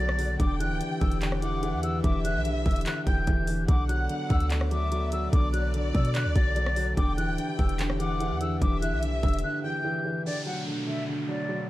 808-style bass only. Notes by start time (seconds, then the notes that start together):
Already playing: B1
0.40 E1
0.71 D1
1.01 E1
1.73 E2
2.04 E1
2.35 B1
2.66 E1
3.07 E1
3.27 E1
3.68 B1
4.30 D2
5.33 B1
5.95 B2
6.25 D2
6.36 B1
6.97 E1
7.28 D1
7.59 E1
8.31 E2
8.62 E1
8.92 B1
9.23 E1